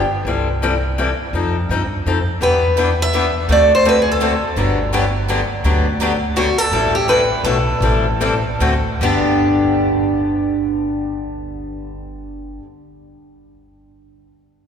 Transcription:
0.25 1.11 C2 medium
0.25 0.47 C3 medium
0.25 0.47 E3 medium
0.25 0.47 G3 medium
0.25 0.48 C4 medium
0.25 0.47 E4 medium
0.25 0.48 A4 medium
0.62 0.73 C3 medium
0.62 0.73 E3 medium
0.62 0.73 G3 medium
0.62 0.73 C4 medium
0.62 0.74 E4 medium
0.62 0.74 A4 medium
0.98 1.09 C3 medium
0.98 1.09 E3 medium
0.98 1.09 G3 medium
0.98 1.09 C4 medium
0.98 1.09 E4 medium
0.98 1.09 A4 medium
1.33 1.62 F2 medium
1.33 1.55 F3 medium
1.33 1.55 C4 medium
1.33 1.55 D#4 medium
1.33 1.55 A4 medium
1.69 2.00 G2 medium
1.69 1.81 F3 medium
1.69 1.81 C4 medium
1.69 1.81 D#4 medium
1.69 1.82 A4 medium
2.06 2.36 F2 medium
2.06 2.17 F3 medium
2.06 2.17 C4 medium
2.06 2.17 D#4 medium
2.06 2.17 A4 medium
2.41 3.27 E2 medium
2.41 2.62 E3 medium
2.41 2.62 G3 medium
2.41 2.63 B3 medium
2.41 2.63 D4 medium
2.41 2.63 E4 medium
2.41 2.63 G4 medium
2.41 2.63 B4 medium
2.41 2.75 B4 medium
2.77 2.88 E3 medium
2.77 2.88 G3 medium
2.77 2.89 B3 medium
2.77 2.89 D4 medium
2.77 2.88 E4 medium
2.77 2.89 G4 medium
2.77 2.88 B4 medium
3.02 3.34 E5 loud
3.13 3.25 E3 medium
3.13 3.24 G3 medium
3.13 3.25 B3 medium
3.13 3.25 D4 medium
3.13 3.24 E4 medium
3.13 3.25 G4 medium
3.13 3.25 B4 medium
3.48 4.35 D2 medium
3.48 3.70 D3 medium
3.48 3.71 A3 medium
3.48 3.71 C4 medium
3.48 3.71 F#4 medium
3.48 3.71 A4 medium
3.48 3.73 D5 medium
3.75 3.87 C5 medium
3.86 3.96 D3 medium
3.86 3.96 A3 medium
3.86 3.96 C4 medium
3.86 3.97 F#4 medium
3.86 3.96 A4 medium
3.86 4.00 B4 medium
4.02 4.09 G#4 medium
4.12 4.43 A4 medium
4.21 4.32 D3 medium
4.21 4.32 A3 medium
4.21 4.32 C4 medium
4.21 4.32 F#4 medium
4.21 4.33 A4 medium
4.56 5.42 G1 medium
4.56 4.78 D3 medium
4.56 4.78 F#3 medium
4.56 4.78 B3 medium
4.56 4.78 D4 medium
4.56 4.79 G4 medium
4.93 5.04 D3 medium
4.93 5.04 F#3 medium
4.93 5.04 B3 medium
4.93 5.04 D4 medium
4.93 5.04 G4 medium
5.29 5.40 D3 medium
5.29 5.40 F#3 medium
5.29 5.40 B3 medium
5.29 5.40 D4 medium
5.29 5.40 G4 medium
5.64 6.50 D2 medium
5.64 5.85 D3 medium
5.64 5.86 F#3 medium
5.64 5.86 B3 medium
5.64 5.86 D4 medium
5.64 5.86 G4 medium
6.01 6.12 D3 medium
6.01 6.12 F#3 medium
6.01 6.12 B3 medium
6.01 6.12 D4 loud
6.01 6.12 G4 medium
6.36 6.47 D3 medium
6.36 6.47 F#3 medium
6.36 6.48 B3 medium
6.36 6.48 D4 medium
6.36 6.58 F#4 medium
6.36 6.48 G4 medium
6.58 6.94 A4 medium
6.71 7.30 A1 medium
6.71 6.93 E3 medium
6.71 6.94 G3 medium
6.71 6.94 C4 medium
6.71 6.94 E4 medium
6.71 6.94 A4 medium
6.95 7.08 G4 medium
7.09 7.20 E3 medium
7.09 7.20 G3 medium
7.09 7.20 C4 medium
7.09 7.20 E4 medium
7.09 7.20 A4 medium
7.09 7.44 B4 medium
7.44 7.74 B1 medium
7.44 7.56 B2 medium
7.44 7.56 F#3 medium
7.44 7.56 A3 medium
7.44 7.57 D4 medium
7.44 7.57 F#4 medium
7.44 8.82 A4 medium
7.44 7.56 B4 medium
7.80 8.43 A1 medium
7.80 8.05 E3 medium
7.80 8.05 G3 medium
7.80 8.05 C4 medium
7.80 8.05 E4 medium
7.80 8.05 A4 medium
8.20 8.32 E3 medium
8.20 8.33 G3 medium
8.20 8.33 C4 medium
8.20 8.33 E4 medium
8.20 8.33 A4 medium
8.60 8.93 D2 medium
8.60 8.73 D3 medium
8.60 8.73 A3 medium
8.60 8.73 C4 medium
8.60 8.73 F#4 medium
8.60 8.73 A4 medium
9.01 12.58 G1 medium
9.01 12.62 G2 medium
9.01 12.62 D3 medium
9.01 12.64 B3 medium
9.01 12.65 D4 medium
9.01 12.60 G4 medium
9.01 12.65 G4 medium

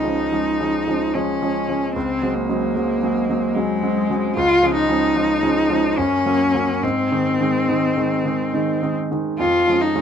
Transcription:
0.00 1.96 C#2 soft
0.00 0.04 F3 soft
0.00 0.05 G#3 soft
0.00 0.05 C#4 soft
0.00 1.15 D#4 soft
0.04 0.29 F3 soft
0.04 0.29 G#3 soft
0.04 0.29 C#4 soft
0.32 0.57 F3 soft
0.32 0.57 G#3 soft
0.32 0.57 C#4 soft
0.60 0.85 F3 soft
0.60 0.85 G#3 soft
0.60 0.85 C#4 soft
0.88 1.12 F3 soft
0.88 1.12 G#3 soft
0.88 1.12 C#4 soft
1.13 1.39 F3 soft
1.13 1.39 G#3 soft
1.13 1.93 C#4 soft
1.13 1.39 C#4 soft
1.42 1.66 F3 soft
1.42 1.66 G#3 soft
1.42 1.66 C#4 soft
1.69 1.92 F3 soft
1.69 1.93 G#3 soft
1.69 1.93 C#4 soft
1.94 2.21 C#2 soft
1.94 2.35 C4 medium
2.22 2.46 F#3 soft
2.22 2.46 G#3 soft
2.22 2.46 C4 soft
2.34 3.56 A#3 soft
2.49 2.73 F#3 soft
2.49 2.73 G#3 soft
2.49 2.73 C4 soft
2.76 2.99 F#3 soft
2.76 2.99 G#3 soft
2.76 3.00 C4 soft
3.03 3.26 F#3 soft
3.03 3.26 G#3 soft
3.03 3.26 C4 soft
3.30 3.53 F#3 soft
3.30 3.53 G#3 soft
3.30 3.53 C4 soft
3.54 3.80 F#3 soft
3.54 4.35 G#3 medium
3.54 3.80 G#3 soft
3.54 3.80 C4 soft
3.83 4.07 F#3 soft
3.83 4.07 G#3 soft
3.83 4.07 C4 soft
4.10 4.33 F#3 soft
4.10 4.34 G#3 soft
4.10 4.34 C4 soft
4.36 4.62 C#2 soft
4.36 4.74 F4 medium
4.63 4.86 F3 soft
4.63 4.86 G#3 soft
4.63 4.86 C#4 soft
4.75 5.99 D#4 medium
4.89 5.12 F3 soft
4.89 5.12 G#3 soft
4.89 5.13 C#4 soft
5.15 5.39 F3 soft
5.15 5.39 G#3 soft
5.15 5.40 C#4 soft
5.43 5.67 F3 soft
5.43 5.67 G#3 soft
5.43 5.67 C#4 soft
5.70 5.95 F3 soft
5.70 5.95 G#3 soft
5.70 5.95 C#4 soft
5.97 6.25 F#2 soft
5.97 6.84 C#4 medium
6.26 6.51 F#3 soft
6.26 6.51 A#3 soft
6.26 6.52 C#4 soft
6.54 6.80 F#3 soft
6.54 6.80 A#3 soft
6.54 6.80 C#4 soft
6.82 7.10 G#2 soft
6.82 8.97 C4 medium
7.11 7.37 D#3 soft
7.11 7.38 G#3 soft
7.11 7.38 D#4 soft
7.40 7.66 D#3 soft
7.40 7.66 G#3 soft
7.40 7.66 D#4 soft
7.68 7.94 D#3 soft
7.68 7.94 G#3 soft
7.68 7.94 D#4 soft
7.97 8.22 D#3 soft
7.97 8.23 G#3 soft
7.97 8.23 D#4 soft
8.24 8.50 D#3 soft
8.24 8.51 G#3 soft
8.24 8.51 D#4 soft
8.53 8.79 D#3 soft
8.53 8.80 G#3 soft
8.53 8.80 D#4 soft
8.82 9.08 D#3 soft
8.82 9.08 G#3 soft
8.82 9.09 D#4 soft
9.11 9.36 D#3 soft
9.11 9.37 G#3 soft
9.11 9.37 D#4 soft
9.39 9.66 F2 soft
9.39 9.83 F4 medium
9.68 9.92 F3 soft
9.68 9.93 G#3 soft
9.68 9.93 C#4 soft
9.81 10.01 D#4 soft
9.96 10.01 F3 soft
9.96 10.01 G#3 soft
9.96 10.01 C#4 soft

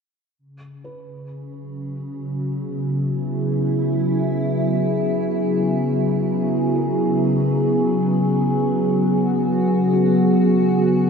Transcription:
0.39 11.10 C#3 medium
0.84 2.64 B4 soft
1.34 11.10 F#3 medium
2.10 11.10 G#4 medium
2.36 11.10 B3 medium
2.74 8.31 E4 medium
6.75 8.55 A#4 soft
8.04 11.10 F#4 medium
9.93 11.10 F#4 soft

